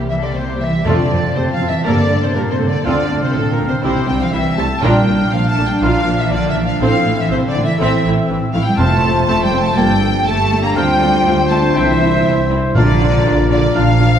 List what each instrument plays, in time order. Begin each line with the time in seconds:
Already playing: double bass section C2, harp C3 G3 A#3 A#4, viola section G3 A#3
0.09 cello section E3, violin section E5, flute E5
0.19 cello section D3, violin section A4 D5
0.24 violin section D5, flute D5
0.34 cello section C3, violin section G4 C5, flute C5
0.60 cello section E3, violin section E5, flute E5
0.85 timpani F2, harp F2, double bass section F2, cello section D3, viola section A3 F4, clarinet C4, french horn section C4 F4, trumpet A4, violin section D5, flute D5, oboe A5
1.11 double bass section F2, harp F3, viola section F3 C4
1.35 double bass section F2, cello section C3, viola section C3 A3, clarinet C4, violin section C5, harp C5, flute C5, oboe A5
1.51 cello section F3, violin section F5, flute F5
1.60 double bass section F2, viola section F3 C4, harp F4
1.68 cello section E3, violin section E5, flute E5
1.84 harp G2, double bass section G2, cello section D3, french horn section A#3 G4, viola section A#3 A#4, clarinet A#3, trumpet A4, violin section D5, flute D5, oboe A5
2.10 double bass section G2, harp G3, viola section A3 A4
2.22 cello section C3, violin section C5, flute C5
2.33 double bass section G2, cello section A#2, viola section G3 G4, clarinet A#3, harp A4, violin section A#4, flute A#4, oboe A5
2.51 cello section C3, violin section C5, flute C5
2.59 double bass section G2, viola section A3 A4, harp A#3
2.67 cello section D3, violin section D5, flute D5
2.84 double bass section D2, cello section D3, harp D3, french horn section C4 F4, viola section C4 F4, clarinet C4, trumpet A4, violin section D5, oboe F5
2.88 flute D5
3.09 double bass section D2, viola section A3 D4, harp C4
3.21 cello section C3, violin section C5, flute C5
3.33 double bass section D2, cello section A2, viola section F3 C4, clarinet C4, harp F4, violin section A4, oboe F5
3.37 flute A4
3.51 cello section A#2, violin section A#4, flute A#4
3.58 double bass section D2, viola section A3 D4, harp A4
3.67 cello section C3, violin section C5, flute C5
3.83 double bass section C2, cello section C3, harp C3, viola section C4 E4, clarinet C4, french horn section C4 E4, trumpet G4, violin section C5, flute C5, oboe E5
4.08 double bass section C2, viola section G3 C4, cello section G3, harp C4, violin section G5, flute G5
4.21 cello section F3, violin section F5, flute F5
4.32 double bass section C2, cello section E3, viola section E3 G3, clarinet C4, harp G4, violin section E5, oboe E5, flute E5
4.56 double bass section C2, viola section G3 C4, cello section A3, harp E4, violin section A5, flute A5
4.82 double bass section A#1, timpani A#2, harp A#2, cello section G3, french horn section D4 F4, viola section D4 F4, clarinet D4, trumpet A#4, oboe F5, violin section G5, flute G5
5.07 double bass section A#1, viola section A#3 D4, harp A#3
5.31 double bass section A#1, viola section F3 A#3, cello section F3, clarinet D4, harp F4, violin section F5, oboe F5, flute F5
5.48 cello section A3, violin section A5, flute A5
5.57 double bass section A#1, viola section A#3 D4, harp D4
5.65 cello section G3, violin section G5, flute G5
5.82 double bass section A#1, harp F3, cello section F3, french horn section D4 F4, viola section D4 F4, clarinet D4, trumpet A#4, violin section F5, oboe F5, flute F5
6.06 double bass section A#1, harp A#3, viola section A#3 D4
6.19 cello section E3, flute E5, violin section E5
6.30 double bass section A#1, cello section D3, viola section F3 A#3, clarinet D4, harp F4, flute D5, violin section D5, oboe F5
6.47 cello section E3, violin section E5, flute E5
6.55 double bass section A#1, viola section A#3 D4, harp D4
6.64 cello section F3, violin section F5, flute F5
6.80 double bass section A1, harp A2, cello section F3, french horn section C4 E4, clarinet C4, viola section C4 A4, trumpet C5, oboe E5, violin section F5, flute F5
7.06 double bass section A1, viola section A3 E4, harp C4
7.19 cello section E3, violin section E5, flute E5
7.30 double bass section A1, cello section C3, viola section E3 C4, clarinet C4, harp A4, flute C5, violin section C5, oboe E5
7.47 cello section D3, violin section D5, flute D5
7.55 double bass section A1, viola section A3 E4, harp E4
7.64 cello section E3, flute E5, violin section E5
7.79 double bass section A1, harp E3, cello section E3, french horn section C4 E4, clarinet C4, viola section C4 A4, trumpet C5, oboe E5, violin section E5, flute E5
8.04 double bass section A1, viola section A3 E4, harp C4
8.29 double bass section A1, viola section E3 C4, harp A4
8.53 double bass section A1, cello section F3, viola section A3 E4, harp E4, violin section F5, flute F5
8.64 cello section G3, flute G5, violin section G5
8.76 double bass section F1, harp F2, timpani F2, cello section A3, clarinet C4, french horn section C4, viola section C4 C5, trumpet C5, oboe F5, violin section A5, flute A5
8.80 french horn section F4
9.03 harp C4, viola section C4 C5
9.25 double bass section F1, cello section A3, viola section C4 C5, harp A4, violin section A5, flute A5
9.43 cello section G3, violin section G5, flute G5
9.52 viola section C4 C5, harp F4
9.59 cello section A3, violin section A5, flute A5
9.76 double bass section G1, harp G2, french horn section A#2 G4, cello section G3, clarinet A#3, viola section A#3 A4, trumpet A4, violin section G5, flute G5, oboe A5
10.01 harp A3, viola section A#3 A4
10.25 double bass section G1, cello section A3, viola section A#3 A4, violin section A5, flute A5
10.51 viola section A#3 A4, harp D4
10.63 cello section A#3, violin section A#5, flute A#5
10.74 double bass section D2, harp D3, cello section G3, french horn section A3, viola section C4 F4, clarinet C4, trumpet C5, oboe F5, violin section G5
10.78 french horn section F4, flute G5
10.99 harp C4, viola section C4 F4
11.24 double bass section D2, viola section C4 F4, harp F4
11.49 cello section A3, viola section C4 F4, harp D4, violin section A5, flute A5
11.74 double bass section C2, harp C3, cello section E3, french horn section G3 E4, clarinet C4, viola section C4 E4, violin section E5, flute E5, oboe G5
12.00 harp C4, viola section C4 E4
12.25 double bass section C2, viola section C4 E4, harp G4
12.50 viola section C4 E4, harp E4
12.74 double bass section A#1, timpani A#2, harp A#2, cello section D3, french horn section F3 F4, viola section D4 F4, clarinet D4, trumpet A#4, violin section D5, flute D5, oboe F5
13.01 harp D4, viola section D4 F4
13.25 double bass section A#1, viola section D4 F4, harp A#4
13.49 cello section D3, viola section D4 F4, harp F4, violin section D5, flute D5
13.75 double bass section A#1, cello section F3, harp F3, clarinet D4, viola section D4 F4, oboe F5, violin section F5, flute F5
14.00 viola section D4 F4, harp D4